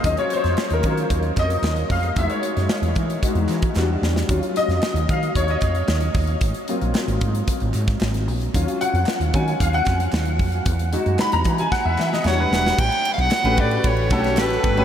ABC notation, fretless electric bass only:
X:1
M:4/4
L:1/16
Q:1/4=113
K:Ebdor
V:1 name="Fretless electric bass" clef=bass
E,, z2 F,, z E,, E,2 E,,2 F,,2 E,,2 F,,2 | =E,, z2 ^F,, z E,, =E,2 z E,, E,2 E,,2 E,,2 | E,, z2 F,, z E,, E,2 E,,2 F,,2 E,,2 E,,2 | A,,, z2 B,,, z A,,, A,,2 z A,,, A,,2 A,,,2 B,,,2 |
E,, z2 F,, z E,, E,2 E,,2 F,,2 E,,2 F,,2 | =E,,3 ^F,, z E,, =E,2 z E,, E,2 E,,2 =E,,,2 | [K:Amix] A,,, z2 B,,, z A,,, A,,2 A,,,2 B,,,2 A,,,2 G,,,2 |]